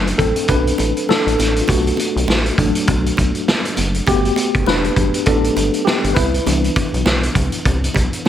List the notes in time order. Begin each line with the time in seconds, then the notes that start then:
Already playing: F#1 F#3 A3 D4
0.07 closed hi-hat
0.18 A1 C4 A4, kick, closed hi-hat, low conga
0.36 closed hi-hat
0.48 B1 D4 B4, kick, closed hi-hat, muted conga
0.67 closed hi-hat
0.78 A1, closed hi-hat, muted conga
0.97 closed hi-hat
1.09 D4 A4, snare, high conga
1.27 A1, closed hi-hat
1.39 A1, snare, closed hi-hat, high conga
1.56 closed hi-hat
1.61 F4
1.68 B1 A3 F#4, kick, closed hi-hat, muted conga
1.87 closed hi-hat
1.97 closed hi-hat, muted conga
2.16 B1, closed hi-hat
2.28 A1, snare, high conga
2.46 closed hi-hat
2.58 A1 F#3 A3 D4, kick, closed hi-hat, low conga
2.75 closed hi-hat
2.87 B1, kick, closed hi-hat, muted conga
3.06 closed hi-hat
3.17 B1, kick, closed hi-hat, muted conga
3.35 closed hi-hat
3.48 snare, high conga
3.65 closed hi-hat
3.77 F#1, closed hi-hat, high conga
3.94 closed hi-hat
4.07 G1 A3 B3 F#4 G4, kick, closed hi-hat, muted conga
4.25 closed hi-hat
4.36 closed hi-hat, muted conga
4.55 F#1, kick, closed hi-hat
4.66 E1 D4 B4, snare, high conga
4.84 closed hi-hat
4.96 G1, kick, closed hi-hat, low conga
5.14 closed hi-hat
5.26 A1 F#3 A3 B3 D4 A4, kick, closed hi-hat, muted conga
5.44 closed hi-hat
5.57 G1, closed hi-hat, muted conga
5.74 closed hi-hat
5.85 B3 G4, snare, high conga
6.04 G1, closed hi-hat
6.15 C2 E4 B4, kick, closed hi-hat, high conga
6.34 closed hi-hat
6.46 C2 E3 B3 D4, closed hi-hat, muted conga
6.64 closed hi-hat
6.76 kick, closed hi-hat, muted conga
6.94 B1, closed hi-hat
7.06 B1, snare, high conga
7.23 closed hi-hat
7.35 C2, kick, closed hi-hat, low conga
7.52 closed hi-hat
7.65 C2, kick, closed hi-hat
7.84 closed hi-hat
7.94 B1, kick, closed hi-hat, muted conga
8.13 closed hi-hat
8.25 high conga